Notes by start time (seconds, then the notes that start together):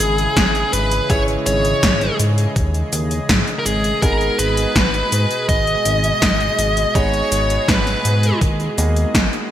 Already playing: C#3 E3 G#3 E4 G#4 G#5
0.00 G#1, closed hi-hat, shaker
0.18 closed hi-hat, shaker
0.37 G#1, kick, snare, closed hi-hat, shaker
0.55 closed hi-hat, shaker
0.73 G#1 B4 B5, closed hi-hat, shaker
0.91 closed hi-hat, shaker
1.10 G#1 G#3 C#4 E4 G#4 C#5 D#5 C#6, kick, closed hi-hat, shaker
1.28 closed hi-hat, shaker
1.46 G#1 C#5 C#6, closed hi-hat, shaker
1.65 closed hi-hat, shaker
1.83 G#1, kick, snare, closed hi-hat, shaker
2.01 snare, closed hi-hat, shaker
2.20 G#2, closed hi-hat, shaker
2.38 closed hi-hat, shaker
2.56 D#2, kick, closed hi-hat, shaker
2.74 closed hi-hat, shaker
2.93 D#2, closed hi-hat, shaker
3.11 closed hi-hat, shaker
3.29 G#1, kick, snare, closed hi-hat, shaker
3.48 closed hi-hat, shaker
3.59 A#4 A#5
3.66 G#1 G#4 G#5, closed hi-hat, shaker
3.84 closed hi-hat, shaker
4.02 G#1 B2 G#3 B3 D#4 G#4 A#4 A#5, kick, closed hi-hat, shaker
4.21 closed hi-hat, shaker
4.39 G#1 B4 B5, closed hi-hat, shaker
4.57 closed hi-hat, shaker
4.76 G#1, kick, snare, closed hi-hat, shaker
4.94 closed hi-hat, shaker
5.12 G#2, closed hi-hat, shaker
5.31 closed hi-hat, shaker
5.49 G#1 D#5 D#6, kick, closed hi-hat, shaker
5.67 closed hi-hat, shaker
5.85 G#1, closed hi-hat, shaker
6.04 closed hi-hat, shaker
6.22 G#1, kick, snare, closed hi-hat, shaker
6.40 closed hi-hat, shaker
6.59 G#1, closed hi-hat, shaker
6.77 closed hi-hat, shaker
6.95 G#1 G#3 B3 D#4 G#4 C#5 C#6, kick, closed hi-hat, shaker
7.14 closed hi-hat, shaker
7.32 G#1, closed hi-hat, shaker
7.50 closed hi-hat, shaker
7.68 G#1 B4 B5, kick, snare, closed hi-hat, shaker
7.87 snare, closed hi-hat, shaker
8.05 G#2, closed hi-hat, shaker
8.23 closed hi-hat, shaker
8.41 D#2, kick, closed hi-hat, shaker
8.60 closed hi-hat, shaker
8.78 D#2 A#3 B3 D#4 G#4, closed hi-hat, shaker
8.96 closed hi-hat, shaker
9.15 G#1, kick, snare, closed hi-hat, shaker
9.33 closed hi-hat, shaker